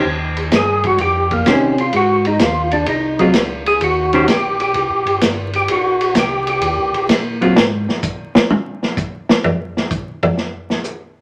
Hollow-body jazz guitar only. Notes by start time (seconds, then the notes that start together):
1.46 D#3 C#4 G4 C5
3.19 F#3 C4 F4
4.13 D#3 C#4 G4 C5
7.41 F#3 C4 F4